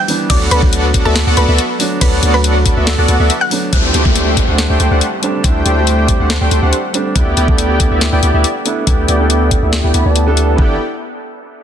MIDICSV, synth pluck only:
0, 0, Header, 1, 2, 480
1, 0, Start_track
1, 0, Key_signature, 1, "major"
1, 0, Tempo, 428571
1, 334, Time_signature, 4, 2, 24, 8
1, 13028, End_track
2, 0, Start_track
2, 0, Title_t, "Synth pluck"
2, 0, Program_c, 0, 84
2, 0, Note_on_c, 0, 79, 77
2, 0, Note_on_c, 0, 91, 95
2, 291, Note_off_c, 0, 79, 0
2, 291, Note_off_c, 0, 91, 0
2, 334, Note_on_c, 0, 74, 78
2, 335, Note_on_c, 0, 86, 104
2, 546, Note_off_c, 0, 74, 0
2, 546, Note_off_c, 0, 86, 0
2, 575, Note_on_c, 0, 71, 79
2, 575, Note_on_c, 0, 83, 99
2, 893, Note_off_c, 0, 71, 0
2, 893, Note_off_c, 0, 83, 0
2, 1180, Note_on_c, 0, 69, 81
2, 1180, Note_on_c, 0, 81, 100
2, 1491, Note_off_c, 0, 69, 0
2, 1491, Note_off_c, 0, 81, 0
2, 1535, Note_on_c, 0, 71, 77
2, 1535, Note_on_c, 0, 83, 92
2, 1853, Note_off_c, 0, 71, 0
2, 1853, Note_off_c, 0, 83, 0
2, 2255, Note_on_c, 0, 71, 83
2, 2255, Note_on_c, 0, 83, 98
2, 2573, Note_off_c, 0, 71, 0
2, 2573, Note_off_c, 0, 83, 0
2, 2621, Note_on_c, 0, 71, 79
2, 2621, Note_on_c, 0, 83, 96
2, 2932, Note_off_c, 0, 71, 0
2, 2932, Note_off_c, 0, 83, 0
2, 3820, Note_on_c, 0, 78, 76
2, 3820, Note_on_c, 0, 90, 93
2, 4131, Note_off_c, 0, 78, 0
2, 4131, Note_off_c, 0, 90, 0
2, 13028, End_track
0, 0, End_of_file